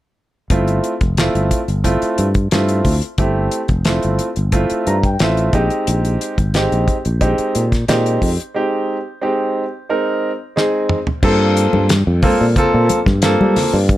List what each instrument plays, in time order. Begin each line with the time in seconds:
0.50 fretless electric bass G1, grand piano A3 C4 E4 F4, kick, closed hi-hat
0.68 closed hi-hat
0.84 closed hi-hat
1.01 fretless electric bass F1, kick, closed hi-hat
1.17 grand piano A3 C4 E4 F4, snare, closed hi-hat
1.35 fretless electric bass G1, closed hi-hat
1.51 kick, closed hi-hat
1.68 fretless electric bass G1, closed hi-hat
1.84 grand piano A3 C4 E4 F4, kick, closed hi-hat
2.02 muted fretless electric bass stroke, closed hi-hat
2.18 fretless electric bass G2, closed hi-hat
2.34 kick, closed hi-hat
2.51 fretless electric bass G2, grand piano A3 C4 E4 F4, snare, closed hi-hat
2.69 closed hi-hat
2.85 fretless electric bass D2, kick, open hi-hat
3.02 closed hi-hat
3.18 fretless electric bass G1, grand piano A3 C4 E4 G4, kick, closed hi-hat
3.51 closed hi-hat
3.68 fretless electric bass F1, kick, closed hi-hat
3.85 grand piano A3 C4 E4 F4, snare, closed hi-hat
4.02 fretless electric bass G1, closed hi-hat
4.19 closed hi-hat
4.36 fretless electric bass G1, closed hi-hat
4.52 grand piano A3 C4 E4 F4, kick, closed hi-hat
4.70 muted fretless electric bass stroke, closed hi-hat
4.87 fretless electric bass G2, grand piano A#5, closed hi-hat
5.03 grand piano G5, kick, closed hi-hat
5.19 fretless electric bass A1, grand piano A3 C4 E4 F4 E5, snare, closed hi-hat
5.37 closed hi-hat
5.53 fretless electric bass A#1, grand piano G#3 C4 D#4 G4 D#5, kick, closed hi-hat
5.70 closed hi-hat
5.87 fretless electric bass A#1, closed hi-hat
6.05 closed hi-hat
6.21 closed hi-hat
6.38 fretless electric bass G#1, kick, closed hi-hat
6.54 grand piano G#3 C4 D#4 G4, snare, closed hi-hat
6.72 fretless electric bass A#1, closed hi-hat
6.88 kick, closed hi-hat
7.05 fretless electric bass A#1, closed hi-hat
7.21 grand piano G#3 C4 D#4 G4, kick, closed hi-hat
7.38 closed hi-hat
7.55 fretless electric bass A#2, closed hi-hat
7.72 kick, snare, closed hi-hat
7.88 fretless electric bass A#2, grand piano G#3 C4 D#4 G4, snare, closed hi-hat
8.06 closed hi-hat
8.22 fretless electric bass F2, kick, open hi-hat
8.40 closed hi-hat
8.54 grand piano G#3 C4 D#4 G4
9.21 grand piano G#3 C4 D#4 G4
9.89 grand piano G#3 C4 D#4 A#4
10.56 grand piano G#3 C4 D#4 G#4, snare
10.89 mid tom
11.07 floor tom
11.23 fretless electric bass G2, grand piano A#3 C4 F4 A4, kick, crash
11.57 closed hi-hat
11.73 fretless electric bass G2, high conga
11.89 snare, closed hi-hat
12.07 fretless electric bass F2
12.22 grand piano A#3 C4 F4 A4, kick, open hi-hat, high conga, low conga
12.41 fretless electric bass A#2
12.56 grand piano A#3 C4 F4 A4, kick, closed hi-hat, low conga
12.74 fretless electric bass A#2
12.89 closed hi-hat, high conga
13.06 fretless electric bass G2, kick, snare, high conga
13.22 grand piano A#3 C4 F4 A4, snare, closed hi-hat
13.41 fretless electric bass G3, high conga
13.56 snare, open hi-hat, low conga
13.74 fretless electric bass G2
13.89 kick, closed hi-hat